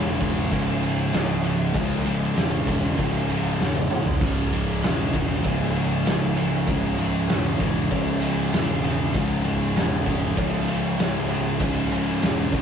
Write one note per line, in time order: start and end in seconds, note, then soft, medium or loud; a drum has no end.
0.00 0.48 E1 loud
0.00 0.20 C#2 loud
0.00 0.49 C#2 medium
0.00 0.20 G#2 loud
0.00 0.49 G#2 medium
0.00 0.21 C#3 loud
0.00 0.52 C#3 loud
0.20 0.51 C#2 loud
0.20 0.51 G#2 medium
0.20 0.52 C#3 loud
0.20 kick medium
0.20 ride medium
0.51 1.10 C#1 loud
0.51 0.82 C#2 medium
0.51 0.82 G#2 loud
0.51 0.84 C#3 medium
0.51 kick medium
0.51 ride loud
0.82 1.14 C#2 loud
0.82 1.13 G#2 loud
0.82 1.15 C#3 loud
0.82 ride medium
1.13 1.71 C#1 loud
1.13 1.44 C#2 loud
1.13 1.44 G#2 loud
1.13 1.45 C#3 loud
1.13 snare loud
1.13 ride loud
1.44 1.74 C#2 medium
1.44 1.74 G#2 medium
1.44 1.76 C#3 loud
1.44 ride medium
1.74 2.03 C#1 loud
1.74 2.05 C#2 loud
1.74 2.05 G#2 loud
1.74 2.06 C#3 loud
1.74 kick loud
1.74 ride loud
2.05 2.34 C#1 loud
2.05 2.35 C#2 loud
2.05 2.35 G#2 loud
2.05 2.36 C#3 medium
2.05 ride medium
2.35 2.94 E1 medium
2.35 2.67 C#2 medium
2.35 2.67 G#2 loud
2.35 2.68 C#3 loud
2.35 snare loud
2.35 ride loud
2.67 2.97 C#2 medium
2.67 2.97 G#2 medium
2.67 2.99 C#3 loud
2.67 kick medium
2.67 ride medium
2.97 3.56 C#1 loud
2.97 3.29 C#2 medium
2.97 3.29 G#2 medium
2.97 3.30 C#3 medium
2.97 kick medium
2.97 ride loud
3.29 3.60 C#2 medium
3.29 3.59 G#2 loud
3.29 3.61 C#3 loud
3.29 ride medium
3.60 4.18 E1 loud
3.60 3.91 C#2 medium
3.60 3.91 G#2 medium
3.60 3.93 C#3 loud
3.60 snare medium
3.75 high tom medium
3.91 4.22 C#2 medium
3.91 4.22 G#2 medium
3.91 4.24 C#3 loud
3.91 mid tom loud
4.06 floor tom loud
4.21 4.50 C#1 loud
4.21 4.53 C#2 loud
4.21 4.53 G#2 loud
4.21 4.54 C#3 loud
4.21 kick loud
4.21 crash loud
4.53 4.81 C#1 loud
4.53 4.83 C#2 medium
4.53 4.83 G#2 loud
4.53 4.84 C#3 loud
4.53 ride medium
4.83 5.41 E1 loud
4.83 5.14 C#2 medium
4.83 5.13 G#2 loud
4.83 5.15 C#3 loud
4.83 snare loud
4.83 ride loud
5.14 5.46 C#2 medium
5.14 5.46 G#2 medium
5.14 5.47 C#3 medium
5.14 kick loud
5.14 ride medium
5.44 6.02 C#1 loud
5.44 5.76 C#2 medium
5.44 5.75 G#2 medium
5.44 5.77 C#3 medium
5.44 kick medium
5.44 ride loud
5.62 snare soft
5.75 6.06 C#2 loud
5.75 6.06 G#2 loud
5.75 6.08 C#3 loud
5.75 ride medium
6.06 6.64 C#1 loud
6.06 6.36 C#2 medium
6.06 6.36 G#2 medium
6.06 6.38 C#3 loud
6.06 snare loud
6.06 ride loud
6.36 6.66 C#2 medium
6.36 6.66 G#2 medium
6.36 6.68 C#3 loud
6.36 ride medium
6.67 6.96 C#1 loud
6.67 6.98 C#2 loud
6.67 6.98 G#2 loud
6.67 6.99 C#3 loud
6.67 kick loud
6.67 ride loud
6.98 7.27 C#1 loud
6.98 7.30 C#2 medium
6.98 7.29 G#2 loud
6.98 7.31 C#3 medium
6.98 ride medium
7.28 7.86 E1 medium
7.28 7.60 C#2 medium
7.28 7.60 G#2 loud
7.28 7.61 C#3 loud
7.28 snare loud
7.28 ride loud
7.60 7.91 C#2 medium
7.60 7.91 G#2 medium
7.60 7.92 C#3 loud
7.60 kick medium
7.60 ride medium
7.91 8.49 C#1 medium
7.91 8.22 C#2 medium
7.91 8.22 G#2 medium
7.91 8.23 C#3 medium
7.91 kick loud
7.91 ride loud
8.22 8.52 C#2 medium
8.22 8.52 G#2 loud
8.22 8.54 C#3 medium
8.22 ride medium
8.52 9.10 E1 medium
8.52 8.83 C#2 medium
8.52 8.83 G#2 medium
8.52 8.84 C#3 loud
8.52 snare loud
8.52 ride loud
8.84 9.15 C#2 medium
8.84 9.15 G#2 loud
8.84 9.16 C#3 loud
8.84 ride medium
9.14 9.43 C#1 loud
9.14 9.45 C#2 loud
9.14 9.45 G#2 loud
9.14 9.46 C#3 loud
9.14 kick loud
9.14 ride loud
9.44 9.73 C#1 loud
9.44 9.76 C#2 medium
9.44 9.75 G#2 loud
9.44 9.77 C#3 loud
9.44 ride medium
9.74 10.33 E1 medium
9.74 10.07 C#2 loud
9.74 10.07 G#2 loud
9.74 10.08 C#3 loud
9.74 snare loud
9.74 ride loud
10.06 10.37 C#2 medium
10.06 10.37 G#2 loud
10.06 10.39 C#3 loud
10.06 kick medium
10.06 ride medium
10.37 10.95 C#1 loud
10.37 10.68 C#2 medium
10.37 10.68 G#2 medium
10.37 10.70 C#3 medium
10.37 kick medium
10.37 ride loud
10.68 10.99 C#2 medium
10.68 10.99 G#2 loud
10.68 11.00 C#3 loud
10.68 ride medium
10.98 11.56 C#1 medium
10.98 11.29 C#2 medium
10.98 11.30 G#2 medium
10.98 11.31 C#3 loud
10.98 snare loud
10.98 ride loud
11.29 11.59 C#2 medium
11.29 11.60 G#2 loud
11.29 11.60 C#3 loud
11.29 ride medium
11.60 11.89 C#1 loud
11.60 11.90 C#2 loud
11.60 11.90 G#2 loud
11.60 11.91 C#3 loud
11.60 kick loud
11.60 ride loud
11.91 12.20 C#1 medium
11.91 12.21 C#2 medium
11.91 12.22 G#2 medium
11.91 12.22 C#3 loud
11.91 ride medium
12.22 12.62 E1 loud
12.22 12.52 C#2 loud
12.22 12.53 G#2 loud
12.22 12.53 C#3 loud
12.22 snare loud
12.22 ride loud
12.53 12.62 C#2 loud
12.53 12.62 G#2 loud
12.53 12.62 C#3 loud
12.53 kick loud
12.53 ride medium